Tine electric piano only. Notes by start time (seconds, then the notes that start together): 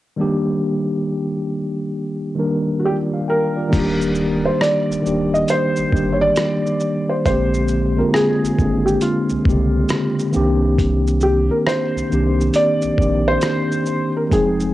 0.16 D#3 G3 A#3 D4
0.21 G4
2.35 D#3 G3 A#3 D4
2.40 A#4
2.85 F4 D5
3.14 F5
3.28 A#4 G5
3.56 F4 D5
3.68 D#3 G3 A#3 D4
3.73 F4
3.79 G4
5.02 D#3 G3 A#3 D4
5.07 G4
5.90 D#3 G3 A#3 D4
5.95 G4
7.25 D3 G#3 A#3 C4
7.30 G4
7.95 D3 G#3 A#3 C4
8.00 F4
8.57 D3 G#3 A#3 C4
8.62 D4
9.45 C#3 G#3 A#3 C4
9.49 D3 G4
10.32 D#3 A#3 C4 D4
10.36 G4
12.10 D#3 A#3 C4 D4
12.14 G4
12.97 D#3 A#3 C4 D4
13.01 G4
14.29 F3 G#3 C4 D#4
14.34 G#4